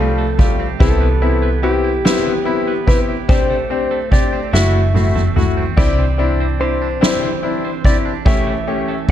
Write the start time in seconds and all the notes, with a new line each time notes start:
Already playing: C2 F3 G3 A3 C4 F4 G4 A4
0.18 A3
0.38 G3 A3 F4 G4, kick, ride
0.59 C4
0.80 C2 E3 B3 C4 E4 G4 A4, kick, ride
1.01 B3
1.22 B3 C4 E4, ride
1.42 B3
1.63 B3 C4 E4 G4, ride
1.84 E4
2.05 G1 E3 B3 C4 E4 G4, snare, ride
2.25 B3
2.45 B3 C4 E4, ride
2.68 B3
2.87 B3 C4 E4 G4 B4, kick
3.09 E4
3.29 A3 C4 D4 G4 C5, kick, ride
3.50 A3
3.70 C4 D4 G4, ride
3.91 A3
4.11 C4 D4 G4 D5, kick, ride
4.33 C4
4.53 F#1 E3 A3 E4 F#4 E5, snare
4.74 A3
4.94 A3 C4 E4 F#4, high tom
5.15 A3, mid tom
5.36 A3 E4 F#4, mid tom
5.57 C4
5.77 C2 E3 C4 D4 E4 G4 D5, kick, splash
5.99 C4
6.18 C4 D4 E4
6.40 C4
6.60 C4 D4 E4 G4 C5, ride
6.82 D4
7.01 G1 E3 C4 D4 E4 G4, snare
7.23 C4
7.42 C4 D4 E4, ride
7.64 C4
7.85 C4 D4 E4 G4 D5, kick, ride
8.05 D4
8.25 E3 A3 C#4 G4 E5, kick, ride
8.47 A3
8.67 A3 C#4 G4, ride
8.88 A3